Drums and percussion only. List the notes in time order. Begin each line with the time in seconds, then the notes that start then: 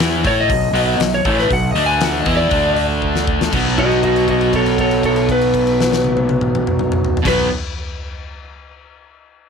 0.00 snare
0.25 kick, open hi-hat
0.50 kick, open hi-hat
0.75 open hi-hat
1.00 snare, open hi-hat
1.25 kick, open hi-hat
1.39 snare
1.51 kick, open hi-hat
1.76 open hi-hat
2.01 snare, open hi-hat
2.26 kick, open hi-hat
2.51 kick, open hi-hat
2.76 open hi-hat
3.02 kick
3.16 snare
3.27 kick
3.41 snare
3.53 kick, crash
3.78 kick, crash
3.91 crash
4.03 kick, crash
4.16 crash
4.28 kick, crash
4.41 crash
4.53 kick, crash
4.66 crash
4.78 kick, crash
4.91 crash
5.03 kick, crash
5.16 crash
5.29 kick, crash
5.41 crash
5.54 kick, crash
5.67 crash
5.81 snare
5.93 snare
6.04 high tom
6.17 high tom
6.29 high tom
6.41 mid tom
6.55 mid tom
6.67 mid tom
6.79 mid tom
6.92 mid tom
7.05 floor tom
7.17 floor tom
7.25 kick, snare, crash